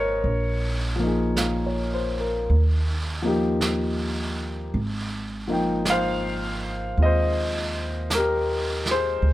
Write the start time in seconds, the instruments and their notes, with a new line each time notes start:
Already playing: upright bass G#1, grand piano C3 F3 A#3 D#4 F4 A#4 C5 C#5 D#5 F5
0.24 upright bass A#1, brush sweep
0.96 grand piano F3 A#3
1.03 grand piano D#4 G#4
1.36 grand piano F5, brush sweep, snare, hi-hat pedal
1.66 grand piano C#5
1.94 grand piano C5
2.20 grand piano A#4
2.49 upright bass D#2, brush sweep
3.22 grand piano F3 A#3 D#4
3.27 grand piano G4
3.61 brush sweep, snare, hi-hat pedal
4.73 upright bass G#1, brush sweep
5.47 grand piano F3 A#3 D#4
5.52 grand piano G5
5.85 brush sweep, snare, hi-hat pedal
5.90 grand piano C5 F5
6.97 upright bass D#2, grand piano G#3 C4 F4, brush sweep
7.02 grand piano C5 D#5
8.10 brush sweep, snare, hi-hat pedal
8.15 grand piano G4 A#4
8.86 snare
8.91 grand piano G#4 C5
9.22 upright bass D2, brush sweep